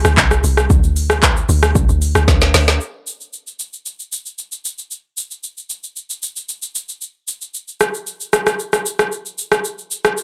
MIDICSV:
0, 0, Header, 1, 3, 480
1, 0, Start_track
1, 0, Tempo, 526316
1, 637, Time_signature, 4, 2, 24, 8
1, 9332, End_track
2, 0, Start_track
2, 0, Title_t, "Log drum bass"
2, 0, Program_c, 0, 39
2, 43, Note_on_c, 0, 38, 93
2, 152, Note_off_c, 0, 38, 0
2, 157, Note_on_c, 0, 36, 100
2, 390, Note_off_c, 0, 36, 0
2, 399, Note_on_c, 0, 36, 89
2, 631, Note_off_c, 0, 36, 0
2, 638, Note_on_c, 0, 38, 103
2, 1322, Note_off_c, 0, 38, 0
2, 1358, Note_on_c, 0, 38, 110
2, 1590, Note_off_c, 0, 38, 0
2, 1599, Note_on_c, 0, 36, 99
2, 1719, Note_off_c, 0, 36, 0
2, 1723, Note_on_c, 0, 38, 88
2, 1955, Note_off_c, 0, 38, 0
2, 1961, Note_on_c, 0, 38, 92
2, 2073, Note_off_c, 0, 38, 0
2, 2077, Note_on_c, 0, 38, 100
2, 2310, Note_off_c, 0, 38, 0
2, 2318, Note_on_c, 0, 38, 97
2, 2550, Note_off_c, 0, 38, 0
2, 9332, End_track
3, 0, Start_track
3, 0, Title_t, "Drums"
3, 43, Note_on_c, 9, 37, 98
3, 43, Note_on_c, 9, 82, 64
3, 134, Note_off_c, 9, 82, 0
3, 135, Note_off_c, 9, 37, 0
3, 157, Note_on_c, 9, 36, 96
3, 157, Note_on_c, 9, 39, 87
3, 160, Note_on_c, 9, 82, 77
3, 248, Note_off_c, 9, 36, 0
3, 248, Note_off_c, 9, 39, 0
3, 251, Note_off_c, 9, 82, 0
3, 282, Note_on_c, 9, 82, 64
3, 284, Note_on_c, 9, 37, 82
3, 373, Note_off_c, 9, 82, 0
3, 375, Note_off_c, 9, 37, 0
3, 400, Note_on_c, 9, 46, 60
3, 400, Note_on_c, 9, 82, 101
3, 491, Note_off_c, 9, 46, 0
3, 491, Note_off_c, 9, 82, 0
3, 523, Note_on_c, 9, 37, 91
3, 524, Note_on_c, 9, 82, 56
3, 614, Note_off_c, 9, 37, 0
3, 615, Note_off_c, 9, 82, 0
3, 638, Note_on_c, 9, 36, 122
3, 638, Note_on_c, 9, 82, 76
3, 730, Note_off_c, 9, 36, 0
3, 730, Note_off_c, 9, 82, 0
3, 764, Note_on_c, 9, 82, 50
3, 855, Note_off_c, 9, 82, 0
3, 878, Note_on_c, 9, 46, 56
3, 878, Note_on_c, 9, 82, 92
3, 970, Note_off_c, 9, 46, 0
3, 970, Note_off_c, 9, 82, 0
3, 1001, Note_on_c, 9, 37, 93
3, 1004, Note_on_c, 9, 82, 52
3, 1092, Note_off_c, 9, 37, 0
3, 1095, Note_off_c, 9, 82, 0
3, 1118, Note_on_c, 9, 39, 95
3, 1119, Note_on_c, 9, 36, 88
3, 1119, Note_on_c, 9, 82, 77
3, 1209, Note_off_c, 9, 39, 0
3, 1210, Note_off_c, 9, 36, 0
3, 1210, Note_off_c, 9, 82, 0
3, 1246, Note_on_c, 9, 82, 48
3, 1337, Note_off_c, 9, 82, 0
3, 1359, Note_on_c, 9, 46, 53
3, 1359, Note_on_c, 9, 82, 90
3, 1450, Note_off_c, 9, 46, 0
3, 1450, Note_off_c, 9, 82, 0
3, 1483, Note_on_c, 9, 37, 98
3, 1484, Note_on_c, 9, 82, 65
3, 1575, Note_off_c, 9, 37, 0
3, 1575, Note_off_c, 9, 82, 0
3, 1599, Note_on_c, 9, 36, 119
3, 1599, Note_on_c, 9, 82, 73
3, 1690, Note_off_c, 9, 36, 0
3, 1691, Note_off_c, 9, 82, 0
3, 1724, Note_on_c, 9, 82, 66
3, 1815, Note_off_c, 9, 82, 0
3, 1839, Note_on_c, 9, 46, 54
3, 1839, Note_on_c, 9, 82, 96
3, 1931, Note_off_c, 9, 46, 0
3, 1931, Note_off_c, 9, 82, 0
3, 1962, Note_on_c, 9, 82, 62
3, 1963, Note_on_c, 9, 37, 97
3, 2054, Note_off_c, 9, 37, 0
3, 2054, Note_off_c, 9, 82, 0
3, 2078, Note_on_c, 9, 36, 97
3, 2079, Note_on_c, 9, 38, 60
3, 2080, Note_on_c, 9, 82, 75
3, 2169, Note_off_c, 9, 36, 0
3, 2170, Note_off_c, 9, 38, 0
3, 2171, Note_off_c, 9, 82, 0
3, 2202, Note_on_c, 9, 82, 63
3, 2204, Note_on_c, 9, 38, 65
3, 2293, Note_off_c, 9, 82, 0
3, 2295, Note_off_c, 9, 38, 0
3, 2318, Note_on_c, 9, 38, 99
3, 2320, Note_on_c, 9, 46, 59
3, 2320, Note_on_c, 9, 82, 96
3, 2410, Note_off_c, 9, 38, 0
3, 2411, Note_off_c, 9, 46, 0
3, 2411, Note_off_c, 9, 82, 0
3, 2444, Note_on_c, 9, 38, 95
3, 2444, Note_on_c, 9, 82, 55
3, 2535, Note_off_c, 9, 38, 0
3, 2535, Note_off_c, 9, 82, 0
3, 2559, Note_on_c, 9, 82, 66
3, 2650, Note_off_c, 9, 82, 0
3, 2798, Note_on_c, 9, 82, 85
3, 2890, Note_off_c, 9, 82, 0
3, 2924, Note_on_c, 9, 82, 46
3, 3015, Note_off_c, 9, 82, 0
3, 3038, Note_on_c, 9, 82, 72
3, 3129, Note_off_c, 9, 82, 0
3, 3165, Note_on_c, 9, 82, 45
3, 3256, Note_off_c, 9, 82, 0
3, 3279, Note_on_c, 9, 82, 80
3, 3370, Note_off_c, 9, 82, 0
3, 3404, Note_on_c, 9, 82, 59
3, 3495, Note_off_c, 9, 82, 0
3, 3519, Note_on_c, 9, 82, 70
3, 3610, Note_off_c, 9, 82, 0
3, 3643, Note_on_c, 9, 82, 62
3, 3735, Note_off_c, 9, 82, 0
3, 3759, Note_on_c, 9, 82, 88
3, 3850, Note_off_c, 9, 82, 0
3, 3882, Note_on_c, 9, 82, 55
3, 3973, Note_off_c, 9, 82, 0
3, 3999, Note_on_c, 9, 82, 69
3, 4090, Note_off_c, 9, 82, 0
3, 4121, Note_on_c, 9, 82, 62
3, 4213, Note_off_c, 9, 82, 0
3, 4240, Note_on_c, 9, 82, 90
3, 4331, Note_off_c, 9, 82, 0
3, 4363, Note_on_c, 9, 82, 51
3, 4454, Note_off_c, 9, 82, 0
3, 4477, Note_on_c, 9, 82, 72
3, 4568, Note_off_c, 9, 82, 0
3, 4717, Note_on_c, 9, 82, 87
3, 4809, Note_off_c, 9, 82, 0
3, 4843, Note_on_c, 9, 82, 48
3, 4934, Note_off_c, 9, 82, 0
3, 4957, Note_on_c, 9, 82, 74
3, 5048, Note_off_c, 9, 82, 0
3, 5084, Note_on_c, 9, 82, 46
3, 5175, Note_off_c, 9, 82, 0
3, 5197, Note_on_c, 9, 82, 81
3, 5288, Note_off_c, 9, 82, 0
3, 5323, Note_on_c, 9, 82, 59
3, 5414, Note_off_c, 9, 82, 0
3, 5438, Note_on_c, 9, 82, 70
3, 5529, Note_off_c, 9, 82, 0
3, 5562, Note_on_c, 9, 82, 65
3, 5653, Note_off_c, 9, 82, 0
3, 5678, Note_on_c, 9, 82, 87
3, 5769, Note_off_c, 9, 82, 0
3, 5801, Note_on_c, 9, 82, 56
3, 5892, Note_off_c, 9, 82, 0
3, 5918, Note_on_c, 9, 82, 75
3, 6009, Note_off_c, 9, 82, 0
3, 6039, Note_on_c, 9, 82, 62
3, 6131, Note_off_c, 9, 82, 0
3, 6157, Note_on_c, 9, 82, 92
3, 6249, Note_off_c, 9, 82, 0
3, 6281, Note_on_c, 9, 82, 49
3, 6373, Note_off_c, 9, 82, 0
3, 6396, Note_on_c, 9, 82, 68
3, 6487, Note_off_c, 9, 82, 0
3, 6637, Note_on_c, 9, 82, 85
3, 6728, Note_off_c, 9, 82, 0
3, 6762, Note_on_c, 9, 82, 48
3, 6854, Note_off_c, 9, 82, 0
3, 6877, Note_on_c, 9, 82, 71
3, 6968, Note_off_c, 9, 82, 0
3, 7004, Note_on_c, 9, 82, 46
3, 7095, Note_off_c, 9, 82, 0
3, 7117, Note_on_c, 9, 82, 82
3, 7120, Note_on_c, 9, 37, 91
3, 7209, Note_off_c, 9, 82, 0
3, 7211, Note_off_c, 9, 37, 0
3, 7243, Note_on_c, 9, 82, 62
3, 7334, Note_off_c, 9, 82, 0
3, 7358, Note_on_c, 9, 82, 67
3, 7449, Note_off_c, 9, 82, 0
3, 7482, Note_on_c, 9, 82, 63
3, 7573, Note_off_c, 9, 82, 0
3, 7598, Note_on_c, 9, 37, 95
3, 7598, Note_on_c, 9, 82, 86
3, 7689, Note_off_c, 9, 37, 0
3, 7689, Note_off_c, 9, 82, 0
3, 7721, Note_on_c, 9, 37, 91
3, 7721, Note_on_c, 9, 82, 60
3, 7812, Note_off_c, 9, 37, 0
3, 7812, Note_off_c, 9, 82, 0
3, 7838, Note_on_c, 9, 82, 73
3, 7929, Note_off_c, 9, 82, 0
3, 7960, Note_on_c, 9, 82, 59
3, 7962, Note_on_c, 9, 37, 75
3, 8051, Note_off_c, 9, 82, 0
3, 8053, Note_off_c, 9, 37, 0
3, 8078, Note_on_c, 9, 82, 93
3, 8169, Note_off_c, 9, 82, 0
3, 8201, Note_on_c, 9, 37, 88
3, 8202, Note_on_c, 9, 82, 52
3, 8292, Note_off_c, 9, 37, 0
3, 8293, Note_off_c, 9, 82, 0
3, 8317, Note_on_c, 9, 82, 67
3, 8408, Note_off_c, 9, 82, 0
3, 8442, Note_on_c, 9, 82, 51
3, 8533, Note_off_c, 9, 82, 0
3, 8556, Note_on_c, 9, 82, 87
3, 8648, Note_off_c, 9, 82, 0
3, 8679, Note_on_c, 9, 37, 91
3, 8681, Note_on_c, 9, 82, 48
3, 8770, Note_off_c, 9, 37, 0
3, 8773, Note_off_c, 9, 82, 0
3, 8796, Note_on_c, 9, 82, 73
3, 8888, Note_off_c, 9, 82, 0
3, 8923, Note_on_c, 9, 82, 45
3, 9014, Note_off_c, 9, 82, 0
3, 9037, Note_on_c, 9, 82, 85
3, 9128, Note_off_c, 9, 82, 0
3, 9162, Note_on_c, 9, 37, 94
3, 9163, Note_on_c, 9, 82, 60
3, 9254, Note_off_c, 9, 37, 0
3, 9254, Note_off_c, 9, 82, 0
3, 9277, Note_on_c, 9, 82, 71
3, 9332, Note_off_c, 9, 82, 0
3, 9332, End_track
0, 0, End_of_file